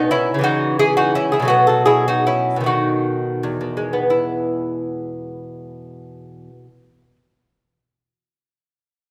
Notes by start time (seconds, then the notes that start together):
Already playing: B2 D#3 B3 D#4
0.11 C#4 E4
0.34 C#3
0.39 E3 G#3
0.44 D#4 F#4
0.79 E4 G#4
0.97 D#4 F#4
1.15 C#4 E4
1.32 E4 G#4
1.40 B2 F#3
1.45 A3 F#4
1.50 B3
1.67 F#4 A4
1.85 E4 G#4
2.08 D#4 F#4
2.27 C#4 E4
2.56 B2
2.60 D#3 A3
2.66 D#4 F#4
3.43 E2
3.61 B2
3.77 G#3
3.93 B3
4.10 E4